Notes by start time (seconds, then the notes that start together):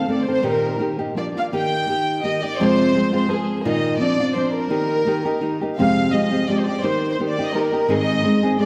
0.08 D#3 A3 C4 A4 D5
0.23 C5
0.28 D#3 A3 C4 A4
0.33 C5
0.43 A#2 D#3 A#3 D#4 G4
0.49 A#4
0.79 D#3 A#3 D#4 G4
0.99 A#3 D#4 G4
1.15 F3 A#3 D4 F4 D5
1.37 A#3 D4 F4 F5
1.53 D#3 A#3 D#4 G4
1.57 G5
1.88 D#3 A#3 D#4 G4
2.23 D#3 A#3 D#4 G4 D#5
2.43 A#3 D#4 G4 D5
2.60 F2 C3 F3 G#3 C4 F4 C5
2.95 F3 G#3 C4 F4
3.13 F3 G#3 C4 F4 C5
3.28 F3 G#3 C4 F4
3.32 G#4
3.65 A#2 D#3 A#3 D#4 F4 D#5
4.00 F3 C4 D4 F4 D5
4.20 C4 D4 F4
4.34 F3 C4 D4 F4 C5
4.54 A#4
4.70 D#3 A#3 D#4 G4
5.06 D#3 A#3 D#4 G4
5.25 A#3 D#4 G4
5.41 D#3 A#3 D#4 G4
5.61 A#3 D#4 G4
5.78 F2 C3 F3 G#3 C4 G4 F5
6.12 F3 G#3 C4 G4 D#5
6.31 F3 G#3 C4 G4
6.48 F3 G#3 C4 G4 D5
6.59 C5
6.64 G4 D5
6.70 F3 G#3 C4
6.83 D#3 A#3 D#4 G4 C5
7.11 C5
7.19 D#3 A#3 D#4 G4
7.29 D5
7.38 A#3 D#4 G4
7.48 D#5
7.54 D#3 A#3 D#4 G4 A#4
7.73 A#3 D#4 G4
7.88 G#2 D#3 G#3 C4 D#4 G#4 D#5
8.23 G#3 C4 D#4 G#4
8.43 G#3 C4 D#4 G#4
8.59 G#3 C4 D#4 G#4 D5